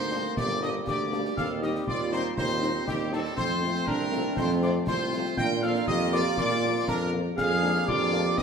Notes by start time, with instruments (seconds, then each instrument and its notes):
Already playing: tuba D2, trombone section G3 A#3, euphonium C4, woodwind section D#4, trumpet section C5, piccolo C6
0.12 french horn section G3 A#3 D4, snare
0.37 tuba G1, euphonium A#3, woodwind section G4, trumpet section D5, piccolo D6, concert bass drum, snare
0.50 snare
0.62 french horn section G3 A#3 D4, woodwind section G4, trumpet section D#5, piccolo D#6, snare
0.87 tuba D2, euphonium D4, woodwind section G4, trumpet section D5, piccolo D6, concert bass drum, snare
1.12 french horn section G3 A#3 D4, snare
1.25 snare
1.37 tuba D#2, trombone section G3 C4, euphonium D#4, woodwind section A4, trumpet section F5, piccolo F6, concert bass drum, snare, crash
1.62 french horn section G3 C4 D#4, woodwind section G4, trumpet section D#5, piccolo D#6, snare
1.75 snare
1.87 tuba D#2, euphonium F4, woodwind section F4, trumpet section D5, piccolo D6, concert bass drum
2.12 french horn section G3 C4 D#4, woodwind section D#4, trumpet section C5, piccolo C6, snare
2.37 tuba D#2, woodwind section D#4, trumpet section C5, piccolo C6, concert bass drum, snare
2.50 snare
2.62 french horn section G3 C4 D#4, snare
2.87 tuba D#2, woodwind section C4, euphonium D#4, trumpet section G4, piccolo G5, concert bass drum, snare
3.12 french horn section G3 C4 D#4, woodwind section C4, trumpet section A4, piccolo A5, snare
3.25 snare
3.37 tuba F2, trombone section A3 C4, euphonium C4, woodwind section F4, trumpet section C5, piccolo C6, concert bass drum, snare, crash
3.62 french horn section F3 A3 C4, snare
3.75 snare
3.87 tuba C2, euphonium D4, woodwind section D4, trumpet section A#4, piccolo A#5, concert bass drum
4.12 french horn section F3 A3 C4, snare
4.36 tuba F2, euphonium C4, woodwind section F4, trumpet section C5, piccolo C6, concert bass drum, snare
4.50 snare
4.62 french horn section F3 A3 C4, woodwind section F4, trumpet section D5, piccolo D6, snare
4.87 tuba C2, woodwind section F4, trumpet section C5, piccolo C6, concert bass drum, snare
5.12 french horn section F3 A3 C4, snare
5.25 snare
5.37 tuba A#2, trombone section A#3 F4, euphonium D4, woodwind section A#4, trumpet section G5, piccolo G6, concert bass drum, snare, crash
5.62 french horn section F3 A#3, woodwind section A4, trumpet section F5, piccolo F6, snare
5.75 snare
5.87 tuba F2, euphonium G4, woodwind section G4, trumpet section D#5, piccolo D#6, concert bass drum
6.12 french horn section F3 A#3, woodwind section F4, trumpet section D5, piccolo D6, snare
6.37 tuba A#2, euphonium F4, woodwind section F4, trumpet section D5, piccolo D6, concert bass drum, snare
6.63 french horn section F3 A#3
6.87 tuba F2, woodwind section D4, trumpet section A#4, piccolo A#5, concert bass drum, snare
7.13 french horn section F3 A#3
7.37 tuba F2, trombone section A#3 D4, euphonium G#4, woodwind section G#4, trumpet section F5, piccolo F6, concert bass drum, snare, crash
7.63 french horn section G#3 A#3 D4, snare
7.76 snare
7.87 tuba F2, woodwind section F4, euphonium G4, trumpet section D5, piccolo D6, concert bass drum
8.13 french horn section G#3 A#3 D4, snare
8.38 tuba G2, trombone section D#4, woodwind section G4, trumpet section D#5, piccolo D#6, concert bass drum, snare